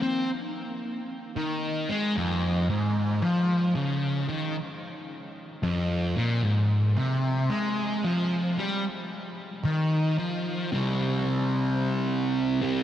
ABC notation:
X:1
M:4/4
L:1/8
Q:1/4=112
K:Cm
V:1 name="Distorted electric guitar" clef=bass
C z4 E,2 A, | F,,2 A,,2 F,2 _D,2 | E, z4 F,,2 B,, | A,,2 C,2 A,2 F,2 |
G, z3 E,2 F,2 | [C,G,C]6- [C,G,C] [C,G,C] |]